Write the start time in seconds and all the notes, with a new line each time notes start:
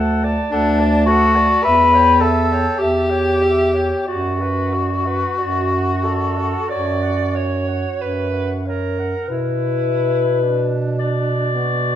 Already playing: D2 A4 F#5
0.24 D5 A5
0.51 D2 D4 A4 F#5
0.80 D5 A5
1.06 F#4 A4 F#5
1.36 D5 A5
1.63 E2 B4 E5
1.93 C#5 G5
2.21 A4 E5
2.52 C#5 G5
2.79 E2 G4 E5
3.10 C#5 G5
3.42 E5
3.74 C#5 G5
4.07 F#2 F#4 D5
4.40 B4 F#5
4.73 F#4 D5
5.06 B4 F#5
5.38 F#2 F#4 D5
5.71 F#5
6.04 A4 D5
6.36 F#5
6.70 F#2 C#5 D5
7.03 F#5
7.35 C#5
7.68 F#5
8.00 F#2 B4 C#5
8.34 F#5
8.66 A#4 C#5
8.99 F#5
9.28 B2 E4 B4
10.44 D4
10.99 D5
11.55 B3 F#4